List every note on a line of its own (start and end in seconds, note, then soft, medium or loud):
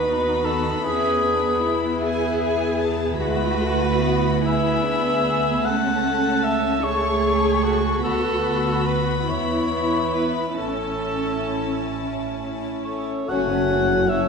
0.00 0.81 D#2 soft
0.00 3.14 B3 soft
0.00 0.84 D#4 soft
0.00 0.80 F#4 soft
0.00 0.46 B4 medium
0.00 2.02 B5 soft
0.44 0.84 A4 medium
0.83 3.15 E2 soft
0.83 1.23 C#4 soft
0.83 1.22 E4 soft
0.83 1.74 G#4 medium
1.23 1.63 B3 soft
1.23 1.62 D4 soft
1.63 3.16 E4 soft
1.63 2.02 E4 soft
2.01 2.75 E4 medium
2.01 3.19 G#4 medium
2.01 2.39 G#5 medium
2.40 2.79 G#5 soft
2.81 3.19 A5 soft
3.17 5.62 D2 medium
3.17 3.59 G#3 soft
3.17 4.41 E4 soft
3.17 4.45 F#4 medium
3.17 4.41 B4 medium
3.17 4.42 B5 soft
3.59 4.02 A3 soft
4.02 4.42 B3 medium
4.43 5.63 B3 soft
4.43 4.85 E4 medium
4.43 5.63 G#4 soft
4.43 5.67 E5 medium
4.43 5.64 B5 medium
4.84 5.25 D4 soft
5.25 5.65 B3 soft
5.65 8.01 C#2 soft
5.65 8.00 A3 soft
5.65 6.85 C#4 medium
5.65 6.83 A4 medium
5.65 6.45 F#5 medium
5.65 6.83 A5 medium
6.44 6.85 E5 medium
6.84 8.04 G#4 medium
6.84 8.02 A4 soft
6.84 7.65 C#5 medium
6.84 8.03 C#6 medium
7.64 8.03 F#4 medium
8.03 9.25 D2 medium
8.03 9.24 B3 soft
8.03 9.28 F#4 medium
8.03 9.26 F#4 soft
8.03 8.87 A4 medium
8.03 10.54 B5 medium
8.86 9.31 B4 soft
9.27 10.58 E2 soft
9.27 10.55 B3 soft
9.27 10.55 E4 soft
9.27 10.57 E4 soft
9.27 10.15 C#5 medium
10.14 10.45 B4 soft
10.57 13.08 A1 soft
10.57 12.59 C#4 soft
10.57 13.04 C#4 soft
10.57 13.05 E4 soft
10.57 11.88 A4 medium
10.57 13.04 A5 soft
12.83 13.26 C#4 soft
12.83 13.33 A4 soft
12.83 13.31 C#5 medium
13.29 14.28 F#1 soft
13.29 14.28 F#2 soft
13.29 13.49 A3 soft
13.29 13.49 C#4 soft
13.29 14.10 F#4 medium
13.29 13.49 F#4 soft
13.29 14.09 C#5 medium
13.29 14.10 F#5 medium
13.50 13.69 A3 soft
13.50 13.71 C#4 soft
13.50 13.70 C#4 soft
13.71 13.90 A3 soft
13.71 13.91 C#4 soft
13.71 13.91 F#4 soft
13.89 14.10 A3 soft
13.89 14.10 C#4 soft
14.07 14.28 C#4 soft
14.07 14.28 E4 medium
14.07 14.28 F#4 soft
14.07 14.28 C#5 medium
14.07 14.28 E5 medium
14.11 14.28 A3 soft